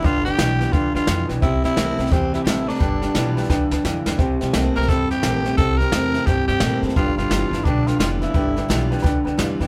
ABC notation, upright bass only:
X:1
M:4/4
L:1/8
Q:"Swing" 1/4=173
K:Gmix
V:1 name="Upright bass" clef=bass
G,,,2 B,,,2 D,, D,, F,, B,,, | C,, C,, C,, C,, E,,2 A,,,2 | G,,,2 B,,,2 D,, D,, F,, E,, | C,, C,, C,, C,, E,,2 _B,,,2 |
C,,2 E,,2 G,, G,, _B,, A,, | G,,, G,,, G,,, G,,, B,,,2 F,,,2 | G,,,2 B,,,2 D,, D,, F,, E,, |]